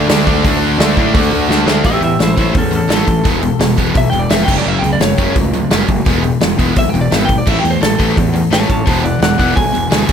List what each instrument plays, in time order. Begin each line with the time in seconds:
Already playing: distorted electric guitar D3 A3 D4
0.08 picked electric bass D2, distorted electric guitar D3 A3 D4 F#4, snare, open hi-hat
0.27 picked electric bass D2, distorted electric guitar D3 A3 D4 F#4, kick
0.44 picked electric bass D2, distorted electric guitar D3 A3 D4 F#4, kick, open hi-hat
0.78 picked electric bass D2, distorted electric guitar D3 A3 D4 F#4, snare, open hi-hat
0.97 picked electric bass A2, distorted electric guitar D3 A3 D4 F#4, kick
1.13 picked electric bass D2, distorted electric guitar D3 A3 D4 F#4, kick, open hi-hat
1.32 picked electric bass D2
1.48 picked electric bass D2, distorted electric guitar D3 A3 D4 F#4, snare
1.66 picked electric bass D2, distorted electric guitar D3 A3 D4 F#4, snare
1.83 picked electric bass A1, distorted electric guitar A2 E3 A3, lead electric guitar G4 E5, kick, open hi-hat
2.01 picked electric bass E2, distorted electric guitar A2 E3, lead electric guitar G4 E5, open hi-hat
2.19 picked electric bass A1, distorted electric guitar A2 E3, lead electric guitar E4 C5, snare, open hi-hat
2.36 picked electric bass A1, distorted electric guitar A2 E3 A3, lead electric guitar E4 C5, kick, open hi-hat
2.53 picked electric bass E2, distorted electric guitar A2 E3, kick, open hi-hat
2.57 lead electric guitar C#4 A4
2.71 distorted electric guitar A2 E3, open hi-hat
2.75 lead electric guitar C#4 A4
2.88 picked electric bass A1, distorted electric guitar A2 E3 A3, snare, open hi-hat
2.93 lead electric guitar A4
3.07 picked electric bass A1, distorted electric guitar A2 E3, kick, open hi-hat
3.24 picked electric bass E1, distorted electric guitar E2 B2 E3 G#3 B3, kick, open hi-hat
3.42 distorted electric guitar E2 B2 E3 G#3, open hi-hat
3.59 picked electric bass E1, distorted electric guitar E2 B2 E3 G#3, snare, open hi-hat
3.77 picked electric bass E1, distorted electric guitar E2 B2 E3 G#3 B3, kick, open hi-hat
3.95 picked electric bass B1, distorted electric guitar E2 B2 E3 G#3, lead electric guitar E5, kick, open hi-hat
4.10 picked electric bass E1, distorted electric guitar E2 B2 E3 G#3, lead electric guitar G5, open hi-hat
4.19 lead electric guitar D5
4.29 picked electric bass F1, distorted electric guitar E2 B2 E3 G#3 B3, lead electric guitar E5, snare, open hi-hat
4.44 distorted electric guitar F#2 F#3, lead electric guitar G5
4.48 picked electric bass F#1, distorted electric guitar C#3 A3 C#4, kick, crash
4.58 lead electric guitar D5
4.65 picked electric bass F#1, distorted electric guitar F#2 C#3 F#3 A3 C#4, lead electric guitar E5
4.79 picked electric bass C#2, distorted electric guitar F#2 C#3, lead electric guitar G5
4.83 distorted electric guitar F#3 A3, open hi-hat
4.93 lead electric guitar D5
5.00 picked electric bass F#1, distorted electric guitar F#2 C#3 F#3 A3, lead electric guitar C#5, snare, open hi-hat
5.18 picked electric bass F#1, distorted electric guitar F#2 C#3 F#3 A3 C#4, kick, open hi-hat
5.35 picked electric bass C#2, distorted electric guitar F#2 C#3 F#3 A3, kick, open hi-hat
5.53 distorted electric guitar F#2 C#3 F#3 A3, open hi-hat
5.70 picked electric bass F#1, distorted electric guitar F#2 C#3 F#3 A3 C#4, snare, open hi-hat
5.88 picked electric bass F#1, distorted electric guitar F#2 C#3 F#3 A3, kick, open hi-hat
6.05 picked electric bass E1, distorted electric guitar E2 B2 E3 G#3 B3, kick, open hi-hat
6.23 distorted electric guitar E2 B2 E3 G#3, open hi-hat
6.41 picked electric bass E1, distorted electric guitar E2 B2 E3 G#3, snare, open hi-hat
6.58 picked electric bass E1, distorted electric guitar E2 B2 E3 G#3 B3, kick, open hi-hat
6.75 picked electric bass B1, distorted electric guitar E2 B2 E3 G#3, lead electric guitar E5, kick, open hi-hat
6.89 distorted electric guitar E2, lead electric guitar G5
6.94 picked electric bass E1, distorted electric guitar B2 E3 G#3, open hi-hat
7.01 lead electric guitar D5
7.11 picked electric bass G#1, distorted electric guitar E2 B2 E3 G#3 B3, lead electric guitar E5, snare, open hi-hat
7.25 distorted electric guitar E2 B2 E3 G#3, lead electric guitar G5, open hi-hat
7.29 kick
7.38 lead electric guitar D5
7.46 picked electric bass A1, distorted electric guitar A2 E3 A3, lead electric guitar E5, kick, crash
7.59 lead electric guitar G5
7.64 picked electric bass E2, distorted electric guitar A2 E3, open hi-hat
7.71 lead electric guitar C5
7.81 picked electric bass A1, distorted electric guitar A2 E3, lead electric guitar A4, snare, open hi-hat
7.98 picked electric bass A1, distorted electric guitar A2 E3 A3, kick, open hi-hat
8.16 picked electric bass E2, distorted electric guitar A2 E3, kick, open hi-hat
8.34 distorted electric guitar A2 E3, open hi-hat
8.51 picked electric bass A1, distorted electric guitar A2 E3 A3, lead electric guitar C#5 A5, snare, open hi-hat
8.70 picked electric bass A1, distorted electric guitar A2 E3, lead electric guitar C#5 A5, kick, open hi-hat
8.85 picked electric bass E1, distorted electric guitar E2 B2 E3 G#3 B3, lead electric guitar C5 A5, kick, open hi-hat
9.02 distorted electric guitar E2 B2 E3 G#3, lead electric guitar D5 F#5, open hi-hat
9.19 picked electric bass E1, distorted electric guitar E2 B2 E3 G#3, lead electric guitar D5 F#5, snare, open hi-hat
9.37 picked electric bass E1, distorted electric guitar E2 B2 E3 G#3 B3, lead electric guitar D5 F#5, kick, open hi-hat
9.55 picked electric bass B1, distorted electric guitar E2 B2 E3 G#3, lead electric guitar G#5, kick, open hi-hat
9.72 picked electric bass E1, distorted electric guitar E2 B2 E3 G#3, open hi-hat
9.90 picked electric bass D2, distorted electric guitar E2 B2 E3 G#3 B3, snare, open hi-hat
10.08 picked electric bass F#1, distorted electric guitar F#2 C#3 F#3 A3 C#4, kick, crash